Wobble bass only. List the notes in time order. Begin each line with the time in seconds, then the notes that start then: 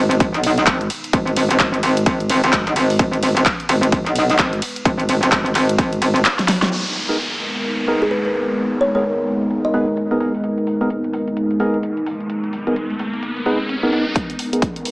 Already playing: G#1
0.34 B1
0.67 G#1
1.13 G#1
1.51 G#1
1.60 G#1
1.83 G#1
2.06 G#1
2.44 G#1
2.67 B1
2.76 G#1
2.99 G#1
3.37 G#1
3.69 G#1
4.06 B1
4.39 G#1
4.85 G#1
5.23 G#1
5.32 G#1
5.55 G#1
5.78 G#1
6.02 G#1